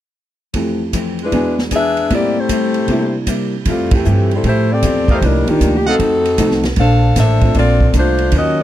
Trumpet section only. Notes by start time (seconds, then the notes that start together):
5.09 A#4 D5 D#5 F5
5.86 A4 D#5 F5 F#5